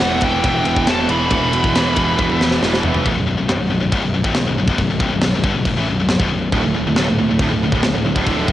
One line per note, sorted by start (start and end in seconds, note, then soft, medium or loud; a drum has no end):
0.00 0.40 E1 medium
0.00 1.08 E2 loud
0.00 0.22 E2 medium
0.00 1.09 B2 loud
0.00 0.21 B2 loud
0.00 1.10 E3 loud
0.00 0.22 E3 loud
0.00 0.20 F#5 loud
0.21 0.42 E2 medium
0.21 0.44 B2 medium
0.21 0.44 E3 medium
0.21 0.90 G5 loud
0.21 kick medium
0.21 ride medium
0.44 0.64 E1 medium
0.44 0.85 E2 loud
0.44 0.86 B2 loud
0.44 0.87 E3 loud
0.44 kick loud
0.44 ride loud
0.65 0.86 E1 medium
0.65 ride medium
0.76 kick medium
0.86 1.08 E1 medium
0.86 1.08 E2 medium
0.86 1.09 B2 medium
0.86 1.09 E3 loud
0.86 snare loud
0.86 ride loud
0.90 1.10 A5 medium
1.09 1.29 E1 medium
1.09 1.29 E2 medium
1.09 1.29 B2 medium
1.09 1.30 E3 medium
1.09 2.58 B5 loud
1.09 ride medium
1.30 1.51 E1 loud
1.30 1.75 E2 loud
1.30 1.75 B2 loud
1.30 1.75 E3 loud
1.30 kick loud
1.30 ride loud
1.53 1.73 E1 medium
1.53 ride medium
1.64 kick medium
1.75 2.15 E1 loud
1.75 1.96 E2 medium
1.75 1.96 B2 medium
1.75 1.97 E3 medium
1.75 snare loud
1.75 ride loud
1.96 2.17 E2 medium
1.96 2.18 B2 medium
1.96 2.18 E3 medium
1.96 kick medium
1.96 ride loud
2.18 2.39 E1 loud
2.18 2.61 E2 loud
2.18 2.62 B2 loud
2.18 2.62 E3 loud
2.18 kick loud
2.18 high tom medium
2.30 high tom medium
2.40 2.60 E1 loud
2.40 snare medium
2.51 snare medium
2.62 2.82 E1 medium
2.62 2.83 E2 medium
2.62 2.83 B2 medium
2.62 2.84 E3 loud
2.62 snare loud
2.74 snare medium
2.83 3.03 E1 medium
2.83 3.04 E2 medium
2.83 3.05 B2 medium
2.83 3.05 E3 medium
2.83 floor tom loud
2.94 floor tom loud
3.05 3.16 B0 medium
3.05 3.16 B1 loud
3.05 3.16 F#2 loud
3.05 kick loud
3.05 crash medium
3.17 3.27 B0 medium
3.17 3.26 B1 medium
3.17 3.26 F#2 medium
3.27 3.38 B0 medium
3.27 3.36 B1 medium
3.27 3.37 F#2 medium
3.37 3.49 B0 medium
3.37 3.48 B1 medium
3.37 3.48 F#2 medium
3.48 3.59 C1 medium
3.48 3.59 C2 medium
3.48 3.59 G2 medium
3.48 snare loud
3.48 crash medium
3.60 3.70 B0 medium
3.60 3.69 B1 medium
3.60 3.69 F#2 medium
3.70 3.81 B0 medium
3.70 3.79 B1 medium
3.70 3.80 F#2 medium
3.80 3.92 B0 medium
3.80 3.91 B1 medium
3.80 3.91 F#2 medium
3.92 4.03 B0 loud
3.92 4.02 B1 loud
3.92 4.02 F#2 loud
3.92 kick loud
3.92 crash medium
4.03 4.14 B0 medium
4.03 4.13 B1 medium
4.03 4.14 F#2 medium
4.14 4.23 B0 medium
4.14 4.24 B1 medium
4.14 4.25 F#2 medium
4.24 4.35 C1 medium
4.24 4.35 C2 medium
4.24 4.35 G2 loud
4.24 kick loud
4.34 4.47 B0 medium
4.34 4.46 B1 medium
4.34 4.47 F#2 medium
4.34 snare loud
4.34 crash medium
4.47 4.58 B0 medium
4.47 4.58 B1 medium
4.47 4.57 F#2 medium
4.58 4.67 B0 medium
4.58 4.68 B1 medium
4.58 4.69 F#2 medium
4.68 4.78 B0 loud
4.68 4.78 B1 loud
4.68 4.78 F#2 loud
4.68 kick loud
4.78 4.89 B0 medium
4.78 4.89 B1 medium
4.78 4.89 F#2 medium
4.78 kick loud
4.78 crash medium
4.90 5.00 B0 medium
4.90 5.00 B1 medium
4.90 5.01 F#2 medium
5.00 5.11 C1 loud
5.00 5.11 C2 loud
5.00 5.11 G2 loud
5.00 kick loud
5.12 5.23 B0 medium
5.12 5.23 B1 medium
5.12 5.23 F#2 medium
5.21 5.34 B0 medium
5.21 5.34 B1 medium
5.21 5.35 F#2 medium
5.21 snare loud
5.21 crash medium
5.35 5.44 B0 medium
5.35 5.44 B1 medium
5.35 5.45 F#2 medium
5.44 5.55 G1 medium
5.44 5.55 G2 medium
5.44 5.55 D3 medium
5.44 kick loud
5.55 5.65 B0 medium
5.55 5.66 B1 medium
5.55 5.66 F#2 medium
5.65 5.76 B0 medium
5.65 5.77 B1 medium
5.65 5.78 F#2 medium
5.65 kick loud
5.65 crash medium
5.77 5.87 A1 medium
5.77 5.87 A2 loud
5.77 5.88 E3 loud
5.88 5.99 B0 medium
5.88 5.98 B1 medium
5.88 5.99 F#2 medium
6.00 6.10 B0 medium
6.00 6.08 B1 medium
6.00 6.08 F#2 medium
6.08 6.20 B1 medium
6.08 6.20 F#2 medium
6.08 snare loud
6.08 crash medium
6.13 6.19 B0 medium
6.20 6.30 B0 medium
6.20 6.30 B1 medium
6.20 6.30 F#2 loud
6.20 kick loud
6.31 6.52 B0 medium
6.31 6.49 B1 medium
6.31 6.49 F#2 medium
6.52 6.63 D1 loud
6.52 6.63 D2 loud
6.52 6.63 A2 loud
6.52 kick loud
6.52 crash medium
6.64 6.76 D1 medium
6.64 6.73 D2 medium
6.64 6.74 A2 medium
6.74 6.86 D1 medium
6.74 6.86 D2 medium
6.74 6.86 A2 medium
6.87 6.97 D1 medium
6.87 6.95 D2 medium
6.87 6.96 A2 medium
6.96 7.08 D1 loud
6.96 7.07 D2 medium
6.96 7.07 A2 medium
6.96 snare loud
6.96 crash medium
7.08 7.19 D1 medium
7.08 7.17 D2 medium
7.08 7.18 A2 medium
7.18 7.29 D1 medium
7.18 7.29 D2 medium
7.18 7.29 A2 medium
7.29 7.39 D1 medium
7.29 7.40 D2 medium
7.29 7.41 A2 medium
7.39 7.50 D1 loud
7.39 7.51 D2 loud
7.39 7.51 A2 loud
7.39 kick loud
7.39 crash medium
7.51 7.61 D1 medium
7.51 7.63 D2 medium
7.51 7.63 A2 medium
7.63 7.71 D1 medium
7.63 7.74 D2 medium
7.63 7.74 A2 medium
7.72 7.82 D1 medium
7.72 7.84 D2 medium
7.72 7.84 A2 loud
7.72 kick loud
7.83 7.95 D1 medium
7.83 7.93 D2 medium
7.83 7.94 A2 medium
7.83 snare loud
7.83 crash medium
7.95 8.05 D1 medium
7.95 8.05 D2 medium
7.95 8.05 A2 medium
8.05 8.15 D1 medium
8.05 8.15 D2 medium
8.05 8.16 A2 medium
8.15 8.26 D1 loud
8.15 8.27 D2 loud
8.15 8.27 A2 medium
8.15 kick loud
8.26 8.47 D1 loud
8.26 8.48 D2 medium
8.26 8.49 A2 loud
8.26 8.49 D3 loud
8.26 kick loud
8.26 crash medium
8.48 8.52 D1 loud
8.48 8.52 D2 medium
8.48 8.52 A2 loud
8.48 kick loud